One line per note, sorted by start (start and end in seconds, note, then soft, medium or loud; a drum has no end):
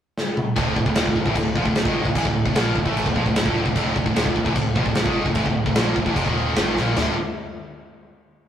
0.18 snare medium
0.37 mid tom medium
0.56 0.75 D1 medium
0.56 0.75 D2 medium
0.56 0.75 A2 loud
0.56 0.77 D3 medium
0.56 kick loud
0.56 china medium
0.76 0.85 D1 medium
0.76 0.85 D2 medium
0.76 0.85 A2 medium
0.76 kick loud
0.86 0.96 D1 medium
0.86 0.95 D2 medium
0.86 0.96 A2 medium
0.86 kick medium
0.95 1.05 D#1 medium
0.95 1.06 D#2 medium
0.95 1.06 A#2 medium
0.95 snare loud
0.95 china medium
1.06 1.15 D1 medium
1.06 1.15 D2 medium
1.06 1.15 A2 medium
1.06 kick medium
1.16 1.25 D1 medium
1.16 1.26 D2 medium
1.16 1.25 A2 medium
1.16 kick medium
1.26 1.35 A1 loud
1.26 1.36 A2 medium
1.26 1.36 E3 loud
1.26 kick medium
1.35 1.55 D1 medium
1.35 1.53 D2 medium
1.35 1.53 A2 medium
1.35 kick medium
1.35 china medium
1.55 1.65 A#1 medium
1.55 1.66 A#2 medium
1.55 1.66 F3 loud
1.55 kick loud
1.65 1.75 D1 medium
1.65 1.75 D2 medium
1.65 1.75 A2 medium
1.65 kick medium
1.75 1.85 D1 medium
1.75 1.85 D2 medium
1.75 1.86 A2 medium
1.75 snare loud
1.75 china medium
1.85 2.04 G#1 medium
1.85 2.05 G#2 medium
1.85 2.05 D#3 loud
1.85 2.06 G#3 loud
1.85 kick loud
2.05 2.15 D1 medium
2.05 2.16 D2 medium
2.05 2.15 A2 medium
2.05 kick medium
2.15 2.25 A1 loud
2.15 2.26 A2 medium
2.15 2.26 E3 loud
2.15 kick loud
2.15 china medium
2.25 2.44 D1 medium
2.25 2.42 D2 medium
2.25 2.42 A2 medium
2.25 kick medium
2.45 2.55 D1 medium
2.45 2.54 D2 medium
2.45 2.55 A2 medium
2.45 kick medium
2.55 2.75 A#1 medium
2.55 2.75 A#2 medium
2.55 2.75 F3 loud
2.55 2.75 A#3 medium
2.55 snare loud
2.55 china medium
2.76 2.85 D1 medium
2.76 2.85 D2 medium
2.76 2.84 A2 medium
2.76 kick medium
2.85 3.04 A1 medium
2.85 3.05 A2 medium
2.85 3.05 E3 loud
2.85 3.06 A3 loud
2.85 kick medium
2.97 china medium
3.06 3.15 D1 medium
3.06 3.15 D2 medium
3.06 3.16 A2 medium
3.06 kick medium
3.16 3.25 A#1 medium
3.16 3.25 A#2 medium
3.16 3.25 F3 loud
3.16 kick medium
3.25 3.35 D1 medium
3.25 3.35 D2 medium
3.25 3.35 A2 medium
3.25 kick medium
3.36 3.45 D1 medium
3.36 3.45 D2 medium
3.36 3.45 A2 medium
3.36 snare loud
3.36 china medium
3.45 3.64 D1 loud
3.45 3.64 D2 loud
3.45 3.65 A2 medium
3.45 3.66 D3 loud
3.45 kick loud
3.65 3.75 D1 medium
3.65 3.74 D2 medium
3.65 3.75 A2 medium
3.65 kick medium
3.75 3.95 D1 loud
3.75 3.95 D2 medium
3.75 3.95 A2 loud
3.75 3.96 D3 medium
3.75 kick loud
3.75 china medium
3.96 4.05 D1 medium
3.96 4.04 D2 medium
3.96 4.05 A2 medium
3.96 kick loud
4.06 4.15 D1 medium
4.06 4.16 D2 medium
4.06 4.16 A2 medium
4.06 kick medium
4.16 4.25 D#1 loud
4.16 4.25 D#2 loud
4.16 4.25 A#2 loud
4.16 snare loud
4.16 china medium
4.25 4.35 D1 medium
4.25 4.34 D2 medium
4.25 4.34 A2 medium
4.25 kick loud
4.35 4.45 D1 medium
4.35 4.45 D2 medium
4.35 4.44 A2 medium
4.35 kick medium
4.45 4.55 A1 medium
4.45 4.54 A2 loud
4.45 4.55 E3 loud
4.45 kick medium
4.55 4.75 D1 medium
4.55 4.72 D2 medium
4.55 4.72 A2 medium
4.55 kick loud
4.55 china medium
4.76 4.85 A#1 medium
4.76 4.85 A#2 loud
4.76 4.85 F3 medium
4.76 kick loud
4.85 4.95 D1 medium
4.85 4.95 D2 medium
4.85 4.96 A2 medium
4.85 kick medium
4.95 5.05 D1 medium
4.95 5.06 D2 medium
4.95 5.06 A2 medium
4.95 snare loud
4.95 china medium
5.05 5.24 G#1 loud
5.05 5.26 G#2 medium
5.05 5.26 D#3 loud
5.05 5.26 G#3 loud
5.05 kick loud
5.25 5.35 D1 medium
5.25 5.36 D2 medium
5.25 5.35 A2 medium
5.25 kick medium
5.35 5.45 A1 loud
5.35 5.46 A2 medium
5.35 5.46 E3 loud
5.35 kick loud
5.35 china medium
5.46 5.65 D1 medium
5.46 5.62 D2 medium
5.46 5.63 A2 medium
5.46 kick medium
5.66 5.75 D1 medium
5.66 5.76 D2 medium
5.66 5.76 A2 medium
5.66 kick medium
5.75 5.95 A#1 medium
5.75 5.96 A#2 medium
5.75 5.96 F3 loud
5.75 5.96 A#3 loud
5.75 snare loud
5.75 china medium
5.96 6.05 D1 medium
5.96 6.06 D2 medium
5.96 6.05 A2 medium
5.96 kick medium
6.06 6.15 A1 medium
6.06 6.16 A2 loud
6.06 6.16 E3 loud
6.06 kick medium
6.16 6.25 F1 medium
6.16 6.26 F2 loud
6.16 6.26 C3 loud
6.16 kick loud
6.16 china medium
6.26 6.54 D#1 medium
6.26 6.56 D#2 medium
6.26 6.56 A#2 loud
6.26 6.56 D#3 loud
6.26 kick medium
6.56 6.66 G1 medium
6.56 6.66 G2 loud
6.56 6.66 D3 loud
6.56 snare loud
6.56 china medium
6.66 6.76 G#1 medium
6.66 6.76 G#2 loud
6.66 6.76 D#3 loud
6.76 6.95 A#1 loud
6.76 6.96 A#2 medium
6.76 6.97 F3 medium
6.76 6.97 A#3 loud
6.76 snare medium
6.96 7.15 D1 loud
6.96 7.13 D2 medium
6.96 7.13 A2 loud
6.96 7.13 D3 loud
6.96 snare loud
6.96 floor tom loud
6.96 crash medium